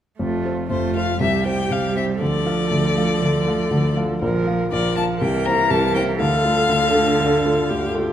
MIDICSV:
0, 0, Header, 1, 5, 480
1, 0, Start_track
1, 0, Tempo, 502934
1, 190, Time_signature, 4, 2, 24, 8
1, 4508, Tempo, 495458
1, 7805, End_track
2, 0, Start_track
2, 0, Title_t, "Violin"
2, 0, Program_c, 0, 40
2, 675, Note_on_c, 0, 72, 62
2, 898, Note_off_c, 0, 72, 0
2, 913, Note_on_c, 0, 77, 61
2, 1148, Note_off_c, 0, 77, 0
2, 1155, Note_on_c, 0, 76, 65
2, 1387, Note_off_c, 0, 76, 0
2, 1396, Note_on_c, 0, 79, 64
2, 1637, Note_on_c, 0, 77, 62
2, 1651, Note_off_c, 0, 79, 0
2, 1871, Note_off_c, 0, 77, 0
2, 1877, Note_on_c, 0, 76, 61
2, 1953, Note_off_c, 0, 76, 0
2, 2117, Note_on_c, 0, 74, 75
2, 3761, Note_off_c, 0, 74, 0
2, 4505, Note_on_c, 0, 74, 69
2, 4731, Note_off_c, 0, 74, 0
2, 4744, Note_on_c, 0, 81, 69
2, 4822, Note_off_c, 0, 81, 0
2, 4983, Note_on_c, 0, 79, 64
2, 5220, Note_on_c, 0, 82, 72
2, 5234, Note_off_c, 0, 79, 0
2, 5456, Note_on_c, 0, 81, 79
2, 5470, Note_off_c, 0, 82, 0
2, 5691, Note_off_c, 0, 81, 0
2, 5697, Note_on_c, 0, 79, 68
2, 5774, Note_off_c, 0, 79, 0
2, 5942, Note_on_c, 0, 77, 94
2, 7594, Note_off_c, 0, 77, 0
2, 7805, End_track
3, 0, Start_track
3, 0, Title_t, "Viola"
3, 0, Program_c, 1, 41
3, 194, Note_on_c, 1, 65, 45
3, 642, Note_off_c, 1, 65, 0
3, 673, Note_on_c, 1, 65, 46
3, 1154, Note_on_c, 1, 67, 49
3, 1168, Note_off_c, 1, 65, 0
3, 2103, Note_off_c, 1, 67, 0
3, 2109, Note_on_c, 1, 69, 54
3, 3992, Note_off_c, 1, 69, 0
3, 4028, Note_on_c, 1, 70, 52
3, 4498, Note_off_c, 1, 70, 0
3, 4506, Note_on_c, 1, 70, 49
3, 4980, Note_off_c, 1, 70, 0
3, 4988, Note_on_c, 1, 70, 58
3, 5924, Note_off_c, 1, 70, 0
3, 5941, Note_on_c, 1, 69, 59
3, 7386, Note_on_c, 1, 67, 60
3, 7400, Note_off_c, 1, 69, 0
3, 7805, Note_off_c, 1, 67, 0
3, 7805, End_track
4, 0, Start_track
4, 0, Title_t, "Grand piano"
4, 0, Program_c, 2, 0
4, 184, Note_on_c, 2, 29, 42
4, 186, Note_on_c, 2, 41, 46
4, 381, Control_c, 2, 64, 127
4, 422, Note_off_c, 2, 29, 0
4, 423, Note_off_c, 2, 41, 0
4, 430, Note_on_c, 2, 60, 37
4, 434, Note_on_c, 2, 69, 33
4, 436, Note_on_c, 2, 72, 41
4, 648, Note_off_c, 2, 60, 0
4, 650, Note_off_c, 2, 69, 0
4, 652, Note_off_c, 2, 72, 0
4, 666, Note_on_c, 2, 41, 44
4, 668, Note_on_c, 2, 29, 42
4, 903, Note_off_c, 2, 41, 0
4, 904, Note_off_c, 2, 29, 0
4, 913, Note_on_c, 2, 60, 31
4, 915, Note_on_c, 2, 69, 33
4, 918, Note_on_c, 2, 72, 38
4, 1128, Note_off_c, 2, 60, 0
4, 1129, Note_off_c, 2, 69, 0
4, 1131, Note_off_c, 2, 72, 0
4, 1145, Note_on_c, 2, 48, 48
4, 1150, Note_on_c, 2, 36, 53
4, 1169, Control_c, 2, 64, 0
4, 1323, Control_c, 2, 64, 127
4, 1379, Note_off_c, 2, 48, 0
4, 1379, Note_on_c, 2, 60, 33
4, 1382, Note_off_c, 2, 36, 0
4, 1383, Note_on_c, 2, 67, 34
4, 1388, Note_on_c, 2, 72, 41
4, 1598, Note_off_c, 2, 60, 0
4, 1600, Note_off_c, 2, 67, 0
4, 1603, Note_off_c, 2, 72, 0
4, 1624, Note_on_c, 2, 36, 43
4, 1626, Note_on_c, 2, 48, 41
4, 1857, Note_off_c, 2, 36, 0
4, 1859, Note_off_c, 2, 48, 0
4, 1863, Note_on_c, 2, 60, 32
4, 1868, Note_on_c, 2, 67, 32
4, 1872, Note_on_c, 2, 72, 34
4, 2081, Note_off_c, 2, 60, 0
4, 2084, Note_off_c, 2, 67, 0
4, 2086, Note_off_c, 2, 72, 0
4, 2100, Note_on_c, 2, 50, 42
4, 2102, Note_on_c, 2, 38, 45
4, 2125, Control_c, 2, 64, 0
4, 2299, Control_c, 2, 64, 127
4, 2337, Note_off_c, 2, 50, 0
4, 2338, Note_off_c, 2, 38, 0
4, 2346, Note_on_c, 2, 57, 38
4, 2348, Note_on_c, 2, 65, 40
4, 2353, Note_on_c, 2, 77, 44
4, 2563, Note_off_c, 2, 57, 0
4, 2564, Note_off_c, 2, 65, 0
4, 2567, Note_off_c, 2, 77, 0
4, 2586, Note_on_c, 2, 50, 43
4, 2587, Note_on_c, 2, 38, 48
4, 2820, Note_off_c, 2, 50, 0
4, 2821, Note_off_c, 2, 38, 0
4, 2833, Note_on_c, 2, 57, 33
4, 2835, Note_on_c, 2, 65, 34
4, 2840, Note_on_c, 2, 77, 35
4, 3048, Note_off_c, 2, 57, 0
4, 3048, Note_off_c, 2, 65, 0
4, 3051, Note_off_c, 2, 77, 0
4, 3070, Note_on_c, 2, 50, 49
4, 3072, Note_on_c, 2, 38, 42
4, 3303, Note_off_c, 2, 50, 0
4, 3304, Note_off_c, 2, 38, 0
4, 3308, Note_on_c, 2, 57, 40
4, 3314, Note_on_c, 2, 65, 35
4, 3320, Note_on_c, 2, 77, 41
4, 3525, Note_off_c, 2, 57, 0
4, 3528, Note_off_c, 2, 65, 0
4, 3531, Note_off_c, 2, 77, 0
4, 3542, Note_on_c, 2, 50, 47
4, 3544, Note_on_c, 2, 38, 50
4, 3778, Note_off_c, 2, 50, 0
4, 3780, Note_off_c, 2, 38, 0
4, 3783, Note_on_c, 2, 57, 35
4, 3786, Note_on_c, 2, 65, 34
4, 3791, Note_on_c, 2, 77, 41
4, 4002, Note_off_c, 2, 57, 0
4, 4004, Note_off_c, 2, 65, 0
4, 4006, Note_off_c, 2, 77, 0
4, 4026, Note_on_c, 2, 34, 54
4, 4029, Note_on_c, 2, 46, 49
4, 4047, Control_c, 2, 64, 0
4, 4179, Control_c, 2, 64, 127
4, 4261, Note_off_c, 2, 34, 0
4, 4262, Note_off_c, 2, 46, 0
4, 4267, Note_on_c, 2, 58, 43
4, 4269, Note_on_c, 2, 65, 35
4, 4274, Note_on_c, 2, 77, 41
4, 4483, Note_off_c, 2, 58, 0
4, 4484, Note_off_c, 2, 65, 0
4, 4487, Note_off_c, 2, 77, 0
4, 4503, Note_on_c, 2, 46, 51
4, 4505, Note_on_c, 2, 34, 49
4, 4740, Note_off_c, 2, 46, 0
4, 4741, Note_off_c, 2, 34, 0
4, 4750, Note_on_c, 2, 58, 37
4, 4750, Note_on_c, 2, 65, 35
4, 4756, Note_on_c, 2, 77, 40
4, 4967, Note_off_c, 2, 58, 0
4, 4967, Note_off_c, 2, 65, 0
4, 4970, Note_off_c, 2, 77, 0
4, 4981, Note_on_c, 2, 48, 46
4, 4985, Note_on_c, 2, 36, 55
4, 5010, Control_c, 2, 64, 0
4, 5172, Control_c, 2, 64, 127
4, 5218, Note_off_c, 2, 48, 0
4, 5220, Note_off_c, 2, 36, 0
4, 5226, Note_on_c, 2, 58, 42
4, 5230, Note_on_c, 2, 64, 40
4, 5231, Note_on_c, 2, 72, 48
4, 5442, Note_off_c, 2, 58, 0
4, 5444, Note_off_c, 2, 64, 0
4, 5444, Note_off_c, 2, 72, 0
4, 5455, Note_on_c, 2, 48, 51
4, 5459, Note_on_c, 2, 36, 51
4, 5692, Note_off_c, 2, 48, 0
4, 5694, Note_off_c, 2, 36, 0
4, 5701, Note_on_c, 2, 58, 41
4, 5707, Note_on_c, 2, 64, 38
4, 5708, Note_on_c, 2, 72, 45
4, 5918, Note_off_c, 2, 58, 0
4, 5922, Note_off_c, 2, 64, 0
4, 5922, Note_off_c, 2, 72, 0
4, 5937, Note_on_c, 2, 50, 56
4, 5939, Note_on_c, 2, 38, 57
4, 5962, Control_c, 2, 64, 0
4, 6101, Control_c, 2, 64, 127
4, 6174, Note_off_c, 2, 38, 0
4, 6174, Note_off_c, 2, 50, 0
4, 6175, Note_on_c, 2, 57, 41
4, 6177, Note_on_c, 2, 65, 45
4, 6181, Note_on_c, 2, 69, 49
4, 6396, Note_off_c, 2, 57, 0
4, 6397, Note_off_c, 2, 65, 0
4, 6399, Note_off_c, 2, 69, 0
4, 6417, Note_on_c, 2, 50, 52
4, 6418, Note_on_c, 2, 38, 53
4, 6656, Note_off_c, 2, 38, 0
4, 6656, Note_off_c, 2, 50, 0
4, 6657, Note_on_c, 2, 57, 41
4, 6661, Note_on_c, 2, 65, 42
4, 6666, Note_on_c, 2, 69, 49
4, 6879, Note_off_c, 2, 57, 0
4, 6882, Note_off_c, 2, 65, 0
4, 6884, Note_off_c, 2, 69, 0
4, 6904, Note_on_c, 2, 38, 49
4, 6904, Note_on_c, 2, 50, 56
4, 7139, Note_off_c, 2, 38, 0
4, 7139, Note_off_c, 2, 50, 0
4, 7151, Note_on_c, 2, 57, 43
4, 7157, Note_on_c, 2, 69, 49
4, 7158, Note_on_c, 2, 65, 46
4, 7366, Note_off_c, 2, 57, 0
4, 7369, Note_off_c, 2, 65, 0
4, 7369, Note_off_c, 2, 69, 0
4, 7389, Note_on_c, 2, 38, 51
4, 7390, Note_on_c, 2, 50, 53
4, 7622, Note_off_c, 2, 38, 0
4, 7622, Note_off_c, 2, 50, 0
4, 7628, Note_on_c, 2, 57, 44
4, 7632, Note_on_c, 2, 65, 45
4, 7636, Note_on_c, 2, 69, 51
4, 7805, Note_off_c, 2, 57, 0
4, 7805, Note_off_c, 2, 65, 0
4, 7805, Note_off_c, 2, 69, 0
4, 7805, End_track
5, 0, Start_track
5, 0, Title_t, "Cello"
5, 0, Program_c, 3, 42
5, 187, Note_on_c, 3, 57, 50
5, 638, Note_off_c, 3, 57, 0
5, 680, Note_on_c, 3, 57, 51
5, 1147, Note_off_c, 3, 57, 0
5, 1152, Note_on_c, 3, 55, 48
5, 2112, Note_on_c, 3, 53, 53
5, 2126, Note_off_c, 3, 55, 0
5, 4027, Note_off_c, 3, 53, 0
5, 4032, Note_on_c, 3, 53, 52
5, 4500, Note_off_c, 3, 53, 0
5, 4517, Note_on_c, 3, 53, 51
5, 4985, Note_on_c, 3, 52, 56
5, 4999, Note_off_c, 3, 53, 0
5, 5940, Note_on_c, 3, 50, 64
5, 5954, Note_off_c, 3, 52, 0
5, 7805, Note_off_c, 3, 50, 0
5, 7805, End_track
0, 0, End_of_file